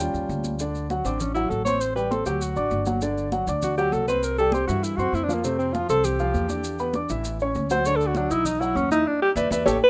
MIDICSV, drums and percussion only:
0, 0, Header, 1, 2, 480
1, 0, Start_track
1, 0, Tempo, 302267
1, 961, Time_signature, 4, 2, 24, 8
1, 15720, End_track
2, 0, Start_track
2, 0, Title_t, "Drums"
2, 0, Note_on_c, 9, 70, 95
2, 2, Note_on_c, 9, 63, 36
2, 152, Note_off_c, 9, 70, 0
2, 161, Note_off_c, 9, 63, 0
2, 228, Note_on_c, 9, 70, 29
2, 238, Note_on_c, 9, 63, 38
2, 387, Note_off_c, 9, 70, 0
2, 397, Note_off_c, 9, 63, 0
2, 466, Note_on_c, 9, 63, 79
2, 476, Note_on_c, 9, 70, 30
2, 624, Note_off_c, 9, 63, 0
2, 635, Note_off_c, 9, 70, 0
2, 695, Note_on_c, 9, 63, 88
2, 700, Note_on_c, 9, 70, 77
2, 854, Note_off_c, 9, 63, 0
2, 859, Note_off_c, 9, 70, 0
2, 942, Note_on_c, 9, 70, 92
2, 944, Note_on_c, 9, 63, 34
2, 1101, Note_off_c, 9, 70, 0
2, 1103, Note_off_c, 9, 63, 0
2, 1188, Note_on_c, 9, 63, 35
2, 1191, Note_on_c, 9, 70, 31
2, 1347, Note_off_c, 9, 63, 0
2, 1350, Note_off_c, 9, 70, 0
2, 1432, Note_on_c, 9, 63, 96
2, 1438, Note_on_c, 9, 70, 29
2, 1591, Note_off_c, 9, 63, 0
2, 1596, Note_off_c, 9, 70, 0
2, 1670, Note_on_c, 9, 70, 68
2, 1691, Note_on_c, 9, 63, 35
2, 1829, Note_off_c, 9, 70, 0
2, 1850, Note_off_c, 9, 63, 0
2, 1907, Note_on_c, 9, 70, 90
2, 1923, Note_on_c, 9, 63, 38
2, 1923, Note_on_c, 9, 64, 88
2, 2066, Note_off_c, 9, 70, 0
2, 2082, Note_off_c, 9, 63, 0
2, 2082, Note_off_c, 9, 64, 0
2, 2146, Note_on_c, 9, 70, 27
2, 2152, Note_on_c, 9, 63, 35
2, 2305, Note_off_c, 9, 70, 0
2, 2311, Note_off_c, 9, 63, 0
2, 2396, Note_on_c, 9, 63, 77
2, 2400, Note_on_c, 9, 70, 29
2, 2555, Note_off_c, 9, 63, 0
2, 2559, Note_off_c, 9, 70, 0
2, 2628, Note_on_c, 9, 63, 82
2, 2640, Note_on_c, 9, 70, 71
2, 2787, Note_off_c, 9, 63, 0
2, 2798, Note_off_c, 9, 70, 0
2, 2871, Note_on_c, 9, 70, 93
2, 3030, Note_off_c, 9, 70, 0
2, 3111, Note_on_c, 9, 63, 33
2, 3129, Note_on_c, 9, 70, 31
2, 3270, Note_off_c, 9, 63, 0
2, 3287, Note_off_c, 9, 70, 0
2, 3356, Note_on_c, 9, 70, 28
2, 3362, Note_on_c, 9, 63, 96
2, 3515, Note_off_c, 9, 70, 0
2, 3521, Note_off_c, 9, 63, 0
2, 3588, Note_on_c, 9, 70, 69
2, 3607, Note_on_c, 9, 63, 38
2, 3746, Note_off_c, 9, 70, 0
2, 3765, Note_off_c, 9, 63, 0
2, 3835, Note_on_c, 9, 70, 91
2, 3844, Note_on_c, 9, 63, 36
2, 3994, Note_off_c, 9, 70, 0
2, 4002, Note_off_c, 9, 63, 0
2, 4067, Note_on_c, 9, 70, 28
2, 4076, Note_on_c, 9, 63, 35
2, 4225, Note_off_c, 9, 70, 0
2, 4235, Note_off_c, 9, 63, 0
2, 4300, Note_on_c, 9, 70, 31
2, 4310, Note_on_c, 9, 63, 77
2, 4459, Note_off_c, 9, 70, 0
2, 4468, Note_off_c, 9, 63, 0
2, 4537, Note_on_c, 9, 70, 72
2, 4560, Note_on_c, 9, 63, 87
2, 4696, Note_off_c, 9, 70, 0
2, 4718, Note_off_c, 9, 63, 0
2, 4788, Note_on_c, 9, 70, 89
2, 4946, Note_off_c, 9, 70, 0
2, 5037, Note_on_c, 9, 63, 35
2, 5044, Note_on_c, 9, 70, 30
2, 5195, Note_off_c, 9, 63, 0
2, 5203, Note_off_c, 9, 70, 0
2, 5274, Note_on_c, 9, 63, 91
2, 5276, Note_on_c, 9, 70, 30
2, 5433, Note_off_c, 9, 63, 0
2, 5435, Note_off_c, 9, 70, 0
2, 5515, Note_on_c, 9, 70, 70
2, 5528, Note_on_c, 9, 63, 36
2, 5674, Note_off_c, 9, 70, 0
2, 5687, Note_off_c, 9, 63, 0
2, 5752, Note_on_c, 9, 70, 95
2, 5761, Note_on_c, 9, 63, 37
2, 5761, Note_on_c, 9, 64, 85
2, 5911, Note_off_c, 9, 70, 0
2, 5919, Note_off_c, 9, 63, 0
2, 5919, Note_off_c, 9, 64, 0
2, 5993, Note_on_c, 9, 63, 36
2, 5999, Note_on_c, 9, 70, 29
2, 6152, Note_off_c, 9, 63, 0
2, 6158, Note_off_c, 9, 70, 0
2, 6229, Note_on_c, 9, 63, 81
2, 6240, Note_on_c, 9, 70, 30
2, 6387, Note_off_c, 9, 63, 0
2, 6399, Note_off_c, 9, 70, 0
2, 6475, Note_on_c, 9, 63, 80
2, 6484, Note_on_c, 9, 70, 72
2, 6633, Note_off_c, 9, 63, 0
2, 6643, Note_off_c, 9, 70, 0
2, 6712, Note_on_c, 9, 63, 35
2, 6720, Note_on_c, 9, 70, 88
2, 6871, Note_off_c, 9, 63, 0
2, 6879, Note_off_c, 9, 70, 0
2, 6948, Note_on_c, 9, 63, 37
2, 6960, Note_on_c, 9, 70, 32
2, 7107, Note_off_c, 9, 63, 0
2, 7119, Note_off_c, 9, 70, 0
2, 7177, Note_on_c, 9, 63, 102
2, 7212, Note_on_c, 9, 70, 30
2, 7336, Note_off_c, 9, 63, 0
2, 7371, Note_off_c, 9, 70, 0
2, 7419, Note_on_c, 9, 63, 38
2, 7441, Note_on_c, 9, 70, 70
2, 7578, Note_off_c, 9, 63, 0
2, 7600, Note_off_c, 9, 70, 0
2, 7666, Note_on_c, 9, 63, 35
2, 7683, Note_on_c, 9, 70, 96
2, 7825, Note_off_c, 9, 63, 0
2, 7842, Note_off_c, 9, 70, 0
2, 7919, Note_on_c, 9, 63, 37
2, 7927, Note_on_c, 9, 70, 29
2, 8077, Note_off_c, 9, 63, 0
2, 8086, Note_off_c, 9, 70, 0
2, 8161, Note_on_c, 9, 63, 83
2, 8175, Note_on_c, 9, 70, 33
2, 8319, Note_off_c, 9, 63, 0
2, 8333, Note_off_c, 9, 70, 0
2, 8401, Note_on_c, 9, 63, 80
2, 8414, Note_on_c, 9, 70, 71
2, 8560, Note_off_c, 9, 63, 0
2, 8573, Note_off_c, 9, 70, 0
2, 8643, Note_on_c, 9, 70, 93
2, 8802, Note_off_c, 9, 70, 0
2, 8879, Note_on_c, 9, 63, 35
2, 8892, Note_on_c, 9, 70, 31
2, 9038, Note_off_c, 9, 63, 0
2, 9050, Note_off_c, 9, 70, 0
2, 9119, Note_on_c, 9, 70, 29
2, 9126, Note_on_c, 9, 63, 97
2, 9278, Note_off_c, 9, 70, 0
2, 9285, Note_off_c, 9, 63, 0
2, 9359, Note_on_c, 9, 70, 74
2, 9372, Note_on_c, 9, 63, 39
2, 9518, Note_off_c, 9, 70, 0
2, 9531, Note_off_c, 9, 63, 0
2, 9594, Note_on_c, 9, 70, 97
2, 9605, Note_on_c, 9, 63, 37
2, 9605, Note_on_c, 9, 64, 84
2, 9753, Note_off_c, 9, 70, 0
2, 9764, Note_off_c, 9, 63, 0
2, 9764, Note_off_c, 9, 64, 0
2, 9833, Note_on_c, 9, 70, 29
2, 9850, Note_on_c, 9, 63, 38
2, 9992, Note_off_c, 9, 70, 0
2, 10009, Note_off_c, 9, 63, 0
2, 10071, Note_on_c, 9, 63, 79
2, 10075, Note_on_c, 9, 70, 29
2, 10230, Note_off_c, 9, 63, 0
2, 10234, Note_off_c, 9, 70, 0
2, 10307, Note_on_c, 9, 63, 85
2, 10310, Note_on_c, 9, 70, 74
2, 10466, Note_off_c, 9, 63, 0
2, 10469, Note_off_c, 9, 70, 0
2, 10545, Note_on_c, 9, 70, 98
2, 10704, Note_off_c, 9, 70, 0
2, 10778, Note_on_c, 9, 70, 33
2, 10787, Note_on_c, 9, 63, 35
2, 10937, Note_off_c, 9, 70, 0
2, 10946, Note_off_c, 9, 63, 0
2, 11015, Note_on_c, 9, 63, 102
2, 11015, Note_on_c, 9, 70, 32
2, 11173, Note_off_c, 9, 63, 0
2, 11174, Note_off_c, 9, 70, 0
2, 11255, Note_on_c, 9, 63, 38
2, 11264, Note_on_c, 9, 70, 74
2, 11414, Note_off_c, 9, 63, 0
2, 11422, Note_off_c, 9, 70, 0
2, 11506, Note_on_c, 9, 70, 103
2, 11516, Note_on_c, 9, 63, 38
2, 11665, Note_off_c, 9, 70, 0
2, 11675, Note_off_c, 9, 63, 0
2, 11748, Note_on_c, 9, 70, 31
2, 11762, Note_on_c, 9, 63, 39
2, 11907, Note_off_c, 9, 70, 0
2, 11921, Note_off_c, 9, 63, 0
2, 11985, Note_on_c, 9, 70, 30
2, 12002, Note_on_c, 9, 63, 85
2, 12143, Note_off_c, 9, 70, 0
2, 12161, Note_off_c, 9, 63, 0
2, 12227, Note_on_c, 9, 70, 76
2, 12241, Note_on_c, 9, 63, 87
2, 12386, Note_off_c, 9, 70, 0
2, 12400, Note_off_c, 9, 63, 0
2, 12469, Note_on_c, 9, 70, 93
2, 12485, Note_on_c, 9, 63, 35
2, 12628, Note_off_c, 9, 70, 0
2, 12644, Note_off_c, 9, 63, 0
2, 12716, Note_on_c, 9, 70, 32
2, 12720, Note_on_c, 9, 63, 36
2, 12874, Note_off_c, 9, 70, 0
2, 12879, Note_off_c, 9, 63, 0
2, 12937, Note_on_c, 9, 63, 102
2, 12947, Note_on_c, 9, 70, 29
2, 13096, Note_off_c, 9, 63, 0
2, 13106, Note_off_c, 9, 70, 0
2, 13174, Note_on_c, 9, 63, 38
2, 13193, Note_on_c, 9, 70, 73
2, 13333, Note_off_c, 9, 63, 0
2, 13352, Note_off_c, 9, 70, 0
2, 13420, Note_on_c, 9, 63, 40
2, 13420, Note_on_c, 9, 64, 87
2, 13428, Note_on_c, 9, 70, 98
2, 13579, Note_off_c, 9, 63, 0
2, 13579, Note_off_c, 9, 64, 0
2, 13587, Note_off_c, 9, 70, 0
2, 13672, Note_on_c, 9, 63, 38
2, 13685, Note_on_c, 9, 70, 31
2, 13831, Note_off_c, 9, 63, 0
2, 13843, Note_off_c, 9, 70, 0
2, 13898, Note_on_c, 9, 63, 85
2, 13924, Note_on_c, 9, 70, 33
2, 14057, Note_off_c, 9, 63, 0
2, 14083, Note_off_c, 9, 70, 0
2, 14148, Note_on_c, 9, 63, 83
2, 14162, Note_on_c, 9, 70, 77
2, 14307, Note_off_c, 9, 63, 0
2, 14321, Note_off_c, 9, 70, 0
2, 14865, Note_on_c, 9, 63, 107
2, 14872, Note_on_c, 9, 70, 103
2, 15024, Note_off_c, 9, 63, 0
2, 15031, Note_off_c, 9, 70, 0
2, 15103, Note_on_c, 9, 63, 107
2, 15118, Note_on_c, 9, 70, 105
2, 15261, Note_off_c, 9, 63, 0
2, 15277, Note_off_c, 9, 70, 0
2, 15337, Note_on_c, 9, 63, 107
2, 15363, Note_on_c, 9, 70, 107
2, 15496, Note_off_c, 9, 63, 0
2, 15522, Note_off_c, 9, 70, 0
2, 15720, End_track
0, 0, End_of_file